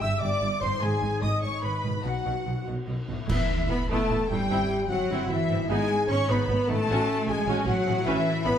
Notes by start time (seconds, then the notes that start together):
Already playing: G2 C4 E4 C5
0.01 G1 G2 E5 E6
0.20 G1 G2 D5 D6
0.41 G1 G2
0.61 G1 G2 G#2 C5 C6
0.69 B3
0.74 D#4
0.78 G#1 G#2 G#4 D#5
0.82 G#5
1.01 G#1 G#2
1.21 G#1 G#2 D#5 D#6
1.42 G#1 G#2 C#5 C#6
1.63 G#1 G#2 B4 B5
1.83 G#1 G#2
1.88 B2
1.92 B3
1.97 D#4
2.01 B2 F#4 D#5
2.05 B1 F#4 F#5
2.26 B1 B2
2.46 B1 B2
2.67 B1 B2
2.88 B1 B2
3.08 B1 B2
3.12 A2
3.16 B3
3.21 E4
3.25 A1 E3 B3 E4 C#5, concert bass drum, crash
3.30 E5
3.68 A1 B3 E4 B4 B5
3.88 A1 A3 B3 E4 A4 A5
4.09 A1 B3 E4
4.29 A1 G2 G3 B3 E4 G4 G5
4.36 C4
4.41 E4
4.45 G1 C5
4.50 C4 E4
4.88 G1 F#3 C4 E4 F#4 F#5
5.09 G1 C4 E4
5.28 G1 E3 C4 E4 E5
5.49 G1 G#2 C4 E4
5.57 B3
5.61 D#4
5.66 G#1 G#3 B3 D#4 D#5 G#5
5.70 G#4 G#5
6.08 G#1 B3 C#4 D#4 C#5 C#6
6.28 G#1 B3 D#4 B4 B5
6.48 G#1 B3 D#4
6.67 G#1 A2 A3 B3 D#4 A4 A5
6.75 C#4
6.80 F#4
6.85 A1 C#5
6.89 C#4 F#4
7.27 A1 G#3 C#4 F#4 G#4 G#5
7.46 A1 C#4 F#4
7.65 A1 F#3 C#4 F#4 F#5
7.86 A1 A2 C#4 F#4
7.93 B3
7.98 E4
8.02 A1 E3 C#4 E4 B4 C#5 E5
8.44 A1 B3 C#4 B4 B5